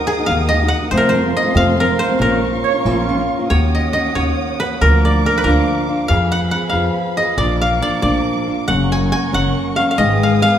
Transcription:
Already playing: nylon-string guitar F#4, violin section A#4 F#5 D#6, koto A#4 C5 D#5
0.00 nylon-string guitar A#3 D#4
0.07 koto G#4
0.18 nylon-string guitar A#3 D#4 F#4
0.26 upright bass D#2, nylon-string guitar D#3 A#3 D#4 F#4, koto F5
0.49 koto D#5
0.53 nylon-string guitar D#3 A#3 D#4 F#4
0.63 nylon-string guitar A#3 D#4 F#4
0.68 koto F#5
0.81 nylon-string guitar A#3 D#4 F#4
0.91 upright bass F2, nylon-string guitar F2 C3 F3 A3 C4 F4, violin section A4 F5 C6, koto C5
0.97 koto A#4
1.09 koto C5
1.15 nylon-string guitar F3 A3 C4 F4
1.24 nylon-string guitar F3 A3 C4 F4
1.37 koto D#5
1.44 nylon-string guitar F3 A3 C4 F4
1.54 nylon-string guitar F2 C3 F3 A3 C4 F4, upright bass F2, koto F5
1.76 nylon-string guitar F3 A3 C4 F4, koto A#4
1.88 nylon-string guitar F3 A3 C4 F4
1.99 koto C5
2.08 nylon-string guitar F3 A3 C4 F4
2.19 upright bass A#1, nylon-string guitar A#2 F3 A#3 C#4 F4, violin section A#4 C#6, koto A#4
2.43 nylon-string guitar F3 A#3 C#4 F4
2.53 nylon-string guitar A#3 C#4 F4
2.64 trumpet C#5
2.74 nylon-string guitar A#3 C#4 F4
2.85 upright bass A#1, nylon-string guitar A#2 F3 A#3 C#4 F4, trumpet F4
3.09 nylon-string guitar F3 A#3 C#4 F4
3.18 nylon-string guitar A#3 C#4 F4
3.39 nylon-string guitar A#3 C#4 F4
3.49 upright bass D#2, nylon-string guitar D#3 A#3 C#4 F#4, koto C#5, violin section C#5 F#5 D#6
3.75 koto D#5
3.93 nylon-string guitar D#3 A#3 C#4 F#4, koto D#5
4.15 upright bass D#2, nylon-string guitar D#3 A#3 C#4 F#4, koto C#5
4.60 nylon-string guitar A#3 C#4 F#4, koto B4
4.81 upright bass D2, nylon-string guitar D3 F3 A#3 D4 F4, violin section A#4 F5 D6, koto A#4
5.05 koto D5
5.24 nylon-string guitar F3 A#3 D4 F4, koto A#4
5.38 koto B4
5.44 upright bass D2, nylon-string guitar D3 F3 A#3 D4 F4, koto A#4
5.88 nylon-string guitar A#3 D4 F4
6.08 upright bass F2, nylon-string guitar F3 B3 F4 G#4, violin section G#4 B5, koto F5
6.32 koto F#5
6.51 nylon-string guitar F3 B3 F4 G#4, koto F#5
6.70 upright bass F2, nylon-string guitar F4 G#4, koto F5
6.74 nylon-string guitar F3 B3
7.17 nylon-string guitar B3 F4 G#4, koto D#5
7.37 upright bass A#1, nylon-string guitar A#2 F3 A#3 D4 F4, violin section A#4 D6, koto D5
7.61 koto F5
7.81 nylon-string guitar F3 A#3 D4 F4, koto D5
8.02 upright bass A#1, nylon-string guitar A#2 F3 A#3 D4 F4, koto D5
8.47 nylon-string guitar A#3 D4 F4
8.68 upright bass F#1, nylon-string guitar F#2 C#3 F#3 A#3 C#4 F#4, violin section A#4 F#5 C#6, koto F#5
8.92 koto G#5
9.12 nylon-string guitar F#3 A#3 C#4 F#4, koto G#5
9.33 upright bass F#1, nylon-string guitar F#2 C#3 F#3 A#3 C#4 F#4, koto F#5
9.76 nylon-string guitar F#3 A#3 C#4 F#4, koto F5
9.91 koto F5
9.98 upright bass G#1, nylon-string guitar G#2 D#3 G#3 B3 D#4 G#4, violin section B4 G#5 D#6, koto D#5
10.23 koto F5
10.42 nylon-string guitar G#3 B3 D#4 G#4, koto F5

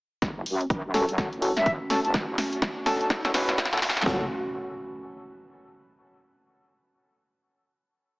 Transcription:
0.22 wobble bass F#1, analog synth pad A3 C#4 F#4, kick, snare, closed hi-hat, riser
0.46 wobble bass F#2, open hi-hat
0.61 closed hi-hat
0.70 kick, closed hi-hat
0.85 wobble bass F#2
0.94 synth stab C#4 F#4 A4, snare, open hi-hat
1.09 closed hi-hat
1.18 synth stab C#4 F#4 A4, kick, snare, closed hi-hat
1.33 wobble bass A1, closed hi-hat
1.42 synth stab C#4 F#4 A4, open hi-hat
1.57 wobble bass F#2, flute E5, snare, closed hi-hat
1.66 kick, closed hi-hat
1.90 synth stab C#4 F#4 A4, flute A5, snare, open hi-hat
2.05 wobble bass F#1, flute A5, closed hi-hat
2.14 kick, snare, closed hi-hat
2.38 snare, open hi-hat
2.53 closed hi-hat
2.62 kick, snare, closed hi-hat
2.86 synth stab C#4 F#4 A4, flute A5, snare, open hi-hat
3.01 flute A5, closed hi-hat
3.10 wobble bass F#1, kick, snare, closed hi-hat
3.25 synth stab C#4 F#4 A4, snare, closed hi-hat
3.34 wobble bass F#1, synth stab C#4 F#4 B4, snare, open hi-hat
3.49 snare, closed hi-hat
3.58 kick, snare, closed hi-hat
3.65 snare
3.73 synth stab C#4 F#4 A4, snare
3.77 snare
3.82 wobble bass E1, snare, open hi-hat
3.89 snare
3.97 wobble bass F#1, snare, closed hi-hat
4.01 snare
4.06 wobble bass F#1, analog synth pad A3 C#4 F#4, synth stab C#4 F#4 A4, kick, snare, impact

